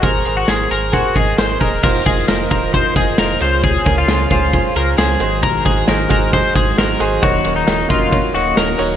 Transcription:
0.02 G#1 G#4 A#4 C5, kick, closed hi-hat
0.25 G#1 G#4 A#4 C5, closed hi-hat
0.37 F#4
0.48 G#1 G#4 A#4 C5, snare, closed hi-hat
0.70 G#1 G#4 A#4 C5, closed hi-hat
0.92 F#4 G#4 A#4 C5, kick, closed hi-hat
1.15 G#1 G#4 A#4 D#5, kick, closed hi-hat
1.37 G#1 G#4 A#4 C5, snare, closed hi-hat
1.60 D#1 G#4 A#4 D#5, kick, open hi-hat
1.82 F1 D#3 A#3 D#4 F4 A#4 C5, kick, crash
2.05 F1 D#4 F4 G#4 A#4 D#5, kick, ride
2.28 F1 D#4 F4 A#4 C5, snare, ride
2.50 D#1 D#4 F4 A#4 C5, kick, ride
2.72 D#4 F4 A#4 C5, kick, ride
2.95 F1 D#4 F4 G#4 A#4 D#5, kick, ride
3.18 F1 D#4 F4 A#4 C5, snare, ride
3.40 C#2 C#3 G#3 C#4 F4 G#4 C5, ride
3.64 G#4, kick, ride
3.85 C#2 C#4 F4 G#4 A#4, kick, ride
3.98 F4
4.08 C#2 C#4 F4 G#4 C5, snare, ride
4.30 C#2 C#4 F4 G#4 C5, kick, ride
4.53 C#4 F4 G#4 C5, kick, ride
4.75 C#2 C#4 F4 G#4 A#4 C5, ride
4.97 C#2 C#4 F4 G#4 C5, snare, ride
5.19 G#1 D#3 F#3 D#4 F#4 G#4 C5, ride
5.43 A#4, kick, ride
5.65 G#1 D#4 F#4 G#4 C5, kick, ride
5.87 G#1 D#4 F#4 G#4 A#4 C5, snare, ride
6.09 G#1 D#4 F#4 G#4 A#4 C5, kick, ride
6.32 D#4 F#4 G#4 C5, kick, ride
6.54 G#1 D#4 F#4 G#4 C5, kick, ride
6.77 G#1 D#4 F#4 G#4 A#4 C5, snare, ride
6.99 G#1 D#4 F#4 G#4 C5, ride
7.21 D#1 D#3 A#3 C#4 D#4 F#4 A#4 C#5, kick, ride
7.44 D#1 D#4 F#4 A#4 C#5, ride
7.56 D#4
7.66 D#1 D#4 F#4 A#4 C#5, snare, ride
7.89 F1 D#4 F4 F#4 A#4 D#5, kick, ride
8.11 D#4 F#4 A#4 C#5, kick, ride
8.34 D#1 D#4 F#4 A#4 C#5, ride
8.55 D#1 D#4 F#4 A#4 C#5, snare, ride
8.78 D#1 D#4 F#4 A#4 C#5, open hi-hat, ride

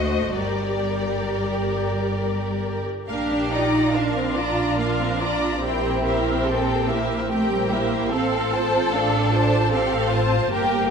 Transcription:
Already playing: D2 A3 F#4 C5 D#5
0.36 G1 G3 G4 A#4 D5
3.08 A#1 A#3 D4 G4 A#4 F5
3.31 D4
3.51 D#4 F4 D5 A#5
3.93 D4 F4 A#4 F5
4.16 C4
4.36 D4 F4 D5 A#5
4.78 A#3 D4 A#4 F5
5.00 C4
5.20 D4 F4 D5 A#5
5.62 C4 E4 G4 A#4 G5
6.05 E4 G4 A#4 C5 E5
6.46 C4 G4 A4 A#4 G5
6.87 A#3 E4 G4 A#4 C5 E5
7.29 A3 C4 G4 A#4 G5
7.51 G3
7.71 A#3 E4 A#4 C5 E5
8.12 A1 C4 A4 F5
8.53 F4 C5 A5
8.92 C4 D4 A4 F5
9.32 F4 C5 A5
9.71 C4 G4 A4 F5
10.11 F4 C5 A5
10.50 G1 A#3 G4 A#4 G5

